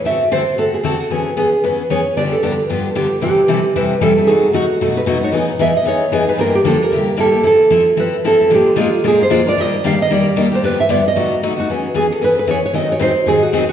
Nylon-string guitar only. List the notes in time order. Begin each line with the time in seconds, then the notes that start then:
0.06 E5
0.32 C5
0.59 A4
0.74 G#4
0.86 A4
1.00 F#4
1.39 G#4
1.64 B4
1.91 C#5
2.17 D5
2.32 A4
2.43 B4
2.91 A4
2.96 G4
3.23 G4
3.76 B4
4.03 A4
4.27 G#4
4.54 F#4
4.82 A4
4.97 B4
5.24 C#5
5.35 D#5
5.61 E5
5.77 D#5
5.88 C#5
6.29 B4
6.41 A#4
6.55 G4
6.68 A4
6.82 A#4
7.20 A4
7.47 A4
8.00 B4
8.27 A4
8.55 G4
8.81 F4
9.08 G#4
9.23 C5
9.48 D5
9.60 D#5
9.87 F5
10.02 D#5
10.12 D5
10.55 C5
10.65 B4
10.80 E5
10.90 D5
11.08 D#5
11.60 F#4
11.98 G#4
12.12 A4
12.24 B4
12.39 B4
12.51 C#5
12.66 C#5
12.75 D#5
12.92 C#5
13.02 C5
13.28 G#4
13.43 F#4
13.55 G#4
13.69 F#4